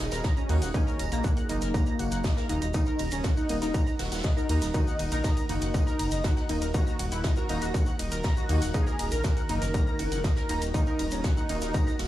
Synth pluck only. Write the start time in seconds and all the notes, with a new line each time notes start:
0.12 A#4 A#5
0.24 A#5 A#6
0.37 A#5 A#6
0.49 F#4 F#5
0.62 F#5 F#6
0.74 D#4 D#5
0.87 A#4 A#5
0.99 A#5 A#6
1.12 A#5 A#6
1.24 F#4 F#5
1.37 F#5 F#6
1.49 D#4 D#5
1.62 A#4 A#5
1.74 A#5 A#6
1.87 A#5 A#6
1.99 F#4 F#5
2.12 F#5 F#6
2.24 D#4 D#5
2.37 A#4 A#5
2.49 A#5 A#6
2.62 A#5 A#6
2.74 D#4 D#5
2.87 A#4 A#5
2.99 A#5 A#6
3.12 A#5 A#6
3.24 F#4 F#5
3.37 F#5 F#6
3.49 D#4 D#5
3.62 A#4 A#5
3.74 A#5 A#6
3.87 A#5 A#6
3.99 F#4 F#5
4.12 F#5 F#6
4.24 D#4 D#5
4.37 A#4 A#5
4.49 A#5 A#6
4.62 A#5 A#6
4.74 F#4 F#5
4.87 F#5 F#6
4.99 D#4 D#5
5.12 A#4 A#5
5.24 A#5 A#6
5.37 A#5 A#6
5.49 F#4 F#5
5.62 F#5 F#6
5.74 D#4 D#5
5.87 A#4 A#5
5.99 A#5 A#6
6.12 A#5 A#6
6.24 F#4 F#5
6.37 F#5 F#6
6.49 D#4 D#5
6.62 A#4 A#5
6.74 A#5 A#6
6.87 A#5 A#6
6.99 F#4 F#5
7.12 F#5 F#6
7.24 D#4 D#5
7.37 A#4 A#5
7.49 A#5 A#6
7.62 A#5 A#6
7.74 F#4 F#5
7.87 F#5 F#6
7.99 D#4 D#5
8.12 A#4 A#5
8.24 A#5 A#6
8.37 A#5 A#6
8.49 F#4 F#5
8.62 F#5 F#6
8.74 D#4 D#5
8.87 A#4 A#5
8.99 A#5 A#6
9.12 A#5 A#6
9.24 F#4 F#5
9.37 F#5 F#6
9.49 D#4 D#5
9.62 A#4 A#5
9.74 A#5 A#6
9.87 A#5 A#6
9.99 F#4 F#5
10.12 F#5 F#6
10.24 D#4 D#5
10.37 A#4 A#5
10.49 A#5 A#6
10.62 A#5 A#6
10.74 D#4 D#5
10.87 A#4 A#5
10.99 A#5 A#6
11.12 A#5 A#6
11.24 F#4 F#5
11.37 F#5 F#6
11.49 D#4 D#5
11.62 A#4 A#5
11.74 A#5 A#6
11.87 A#5 A#6
11.99 F#4 F#5